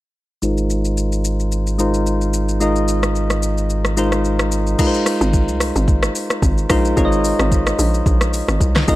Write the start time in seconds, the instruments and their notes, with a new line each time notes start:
0.42 sub bass G#1, synth keys G#3 D#4 F4 A#4 C5, shaker
0.57 shaker
0.70 shaker
0.85 shaker
0.97 shaker
1.12 shaker
1.25 shaker
1.40 shaker
1.52 shaker
1.67 shaker
1.78 synth keys G#3 D#4 F4 A#4 C5, shaker
1.94 shaker
2.06 shaker
2.21 shaker
2.33 shaker
2.49 shaker
2.60 synth keys G#3 D#4 F4 A#4 D#5, shaker
2.76 shaker
2.88 shaker
3.03 cross-stick, shaker
3.15 shaker
3.30 cross-stick, shaker
3.43 shaker
3.58 shaker
3.70 shaker
3.85 cross-stick, shaker
3.97 synth keys G#3 D#4 F4 A#4 C5, shaker
4.12 cross-stick, shaker
4.24 shaker
4.39 cross-stick, shaker
4.52 shaker
4.67 shaker
4.78 synth keys G#3 D#4 F4 A#4 B4, kick, crash, shaker
4.87 synth keys C5
4.94 shaker
5.06 cross-stick, open hi-hat, shaker
5.21 log drum bass G#1, shaker
5.33 kick, shaker
5.48 log drum bass C2, shaker
5.60 cross-stick, open hi-hat, shaker
5.76 log drum bass G#1, shaker
5.88 kick, shaker
6.03 cross-stick, shaker
6.15 open hi-hat, shaker
6.30 cross-stick, shaker
6.42 log drum bass G#1, kick, shaker
6.58 shaker
6.69 log drum bass A#1, synth keys G#3 D#4 F4 A#4 C5, kick, cross-stick, open hi-hat, shaker
6.85 shaker
6.97 log drum bass G#1, synth keys G#3 D#4 F4 A#4 C#5, kick, shaker
7.05 synth keys D#5
7.12 shaker
7.24 open hi-hat, shaker
7.39 log drum bass G#1, cross-stick, shaker
7.52 kick, shaker
7.67 cross-stick, shaker
7.79 log drum bass A#1, open hi-hat, shaker
7.94 shaker
8.06 log drum bass A#1, kick, shaker
8.21 cross-stick, shaker
8.33 open hi-hat, shaker
8.48 log drum bass G#1, cross-stick, shaker
8.60 log drum bass C2, kick, shaker
8.76 cross-stick, snare, shaker
8.88 log drum bass G#1, synth keys G#3 D#4 F4 A#4 D#5, kick, open hi-hat, shaker